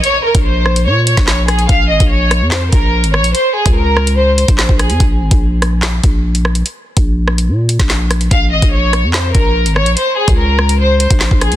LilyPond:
<<
  \new Staff \with { instrumentName = "Violin section" } { \time 4/4 \key bes \minor \tempo 4 = 145 des''8 bes'8 c''4 des''8 des''8 des''8 aes'8 | f''8 ees''8 des''4 c''8 bes'4 des''8 | c''8 aes'8 bes'4 c''8 c''8 c''8 aes'8 | r1 |
r1 | f''8 ees''8 des''4 c''8 bes'4 des''8 | c''8 aes'8 bes'4 c''8 c''8 c''8 aes'8 | }
  \new Staff \with { instrumentName = "808-style bass" } { \clef bass \time 4/4 \key bes \minor r8. bes,,4~ bes,,16 bes,8. bes,,4~ bes,,16 | bes,,8 aes,,16 bes,,4 f,8. bes,,8. aes,,16. bes,,16. | r8. des,2 bes,,8 bes,,8 f,16 | bes,,8 aes,,16 bes,,4.~ bes,,16 bes,,4. |
r8. bes,,4~ bes,,16 bes,8. bes,,4~ bes,,16 | bes,,8 aes,,16 bes,,4 f,8. bes,,8. aes,,16. bes,,16. | r8. des,2 bes,,8 bes,,8 f,16 | }
  \new DrumStaff \with { instrumentName = "Drums" } \drummode { \time 4/4 hh8. <hh bd>16 r8 ss16 hh16 r8 hh16 <hh bd sn>16 <hc sn>8 <hh ss>16 hh16 | <hh bd>8. <hh bd>16 r8 <hh ss>8 <hc hh sn>8 <hh bd>8 r16 hh16 ss16 hh16 | hh8. <hh bd>16 r8 ss16 hh16 r8 hh16 <hh bd>16 <hc sn>16 bd16 <hh ss>16 hh16 | <hh bd>8. <hh bd>16 r8 <hh ss>8 <hc hh sn>8 <hh bd>8 r16 hh16 ss16 hh16 |
hh8. <hh bd>16 r8 ss16 hh16 r8 hh16 <hh bd sn>16 <hc sn>8 <hh ss>16 hh16 | <hh bd>8. <hh bd>16 r8 <hh ss>8 <hc hh sn>8 <hh bd>8 r16 hh16 ss16 hh16 | hh8. <hh bd>16 r8 ss16 hh16 r8 hh16 <hh bd>16 <hc sn>16 bd16 <hh ss>16 hh16 | }
>>